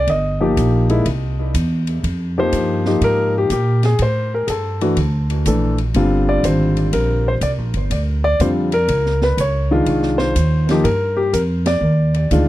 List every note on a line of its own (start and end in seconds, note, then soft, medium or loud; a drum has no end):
0.07 0.55 G1 medium
0.07 1.52 D#5 medium
0.07 kick soft
0.07 ride medium
0.40 0.86 F3 medium
0.40 0.86 A#3 medium
0.40 0.86 D#4 medium
0.40 0.87 G4 medium
0.57 1.04 A#1 medium
0.57 kick soft
0.57 hi-hat pedal soft
0.57 ride medium
0.90 1.04 G#3 medium
0.90 1.04 A#3 medium
0.90 1.04 D#4 medium
0.90 1.05 E4 medium
0.90 ride soft
1.06 1.53 C2 medium
1.06 kick soft
1.06 ride medium
1.54 2.02 E2 medium
1.54 kick soft
1.54 hi-hat pedal medium
1.54 ride medium
1.87 ride soft
2.03 2.51 F2 medium
2.03 kick soft
2.03 ride medium
2.38 2.83 F3 medium
2.38 2.83 A#3 medium
2.38 2.83 D#4 medium
2.38 2.83 G4 medium
2.38 3.05 C5 loud
2.52 3.00 G2 medium
2.52 kick soft
2.52 hi-hat pedal medium
2.52 ride medium
2.85 3.48 F3 medium
2.85 3.48 A#3 medium
2.85 3.48 D#4 medium
2.85 3.36 G4 medium
2.85 snare soft
3.01 3.49 G#2 medium
3.01 3.33 A#4 loud
3.01 kick soft
3.01 ride medium
3.38 3.51 G4 medium
3.50 3.98 A#2 medium
3.50 3.82 G4 medium
3.50 kick soft
3.50 hi-hat pedal medium
3.50 ride medium
3.83 3.99 G#4 medium
3.83 snare soft
3.83 ride soft
3.99 4.47 A2 medium
3.99 4.31 C5 medium
3.99 kick soft
3.99 ride medium
4.34 4.45 A#4 medium
4.47 4.95 G2 medium
4.47 4.50 G#4 medium
4.47 5.43 A4 medium
4.47 kick soft
4.47 hi-hat pedal medium
4.47 ride medium
4.81 4.96 E3 medium
4.81 4.96 A3 medium
4.81 4.96 D4 medium
4.81 4.96 F#4 medium
4.81 ride soft
4.96 5.44 D2 medium
4.96 kick soft
4.96 ride medium
5.30 ride soft
5.46 5.93 A#1 medium
5.46 5.76 E3 medium
5.46 5.76 A3 medium
5.46 5.76 D4 medium
5.46 5.76 A4 medium
5.46 kick soft
5.46 hi-hat pedal medium
5.46 ride medium
5.78 ride soft
5.94 6.42 G1 medium
5.94 7.32 D3 medium
5.94 7.32 G3 medium
5.94 7.32 C4 medium
5.94 7.33 F4 medium
5.94 kick soft
5.94 ride medium
6.29 6.43 D5 medium
6.43 6.91 G#1 medium
6.43 6.90 C5 medium
6.43 kick soft
6.43 hi-hat pedal medium
6.43 ride medium
6.77 ride soft
6.93 7.40 A#1 medium
6.93 7.27 A#4 medium
6.93 kick soft
6.93 ride medium
7.28 7.33 C5 medium
7.41 7.58 C2 medium
7.41 7.50 D5 medium
7.41 kick soft
7.41 hi-hat pedal medium
7.41 ride medium
7.58 7.73 A#1 medium
7.74 7.89 G1 medium
7.74 ride soft
7.90 8.38 D2 medium
7.90 kick soft
7.90 ride medium
8.24 8.40 D5 loud
8.40 8.87 F2 medium
8.40 8.70 D3 medium
8.40 8.70 G3 medium
8.40 8.70 C4 medium
8.40 8.70 F4 medium
8.40 8.48 C5 medium
8.40 kick soft
8.40 hi-hat pedal soft
8.40 ride medium
8.72 9.18 A#4 loud
8.72 ride soft
8.88 9.36 C#2 medium
8.88 kick soft
8.88 ride medium
9.06 snare soft
9.22 9.39 B4 medium
9.22 snare soft
9.37 9.85 C#2 medium
9.37 9.69 C#5 medium
9.37 kick soft
9.37 hi-hat pedal medium
9.37 ride medium
9.71 10.32 D#3 medium
9.71 10.33 G#3 medium
9.71 10.33 D4 medium
9.71 10.33 F4 medium
9.86 10.34 C2 medium
9.86 kick soft
9.86 ride medium
10.03 snare soft
10.18 10.86 C5 medium
10.18 snare soft
10.35 10.83 D#2 medium
10.35 kick soft
10.35 hi-hat pedal medium
10.35 ride medium
10.69 10.84 F3 medium
10.69 10.84 A#3 medium
10.69 10.84 D#4 medium
10.69 10.84 G4 medium
10.69 snare medium
10.69 ride soft
10.84 11.31 G2 medium
10.84 11.18 A#4 medium
10.84 kick soft
10.84 ride medium
11.17 11.32 G4 medium
11.33 11.80 F2 medium
11.33 11.41 A#4 medium
11.33 kick soft
11.33 hi-hat pedal medium
11.33 ride medium
11.66 12.48 D5 medium
11.66 snare medium
11.66 ride medium
11.81 12.29 D#2 medium
12.14 ride soft
12.31 12.48 D2 medium
12.31 12.48 D#3 medium
12.31 12.48 G#3 medium
12.31 12.48 D4 medium
12.31 12.48 F4 medium
12.31 kick soft
12.31 hi-hat pedal soft
12.31 ride medium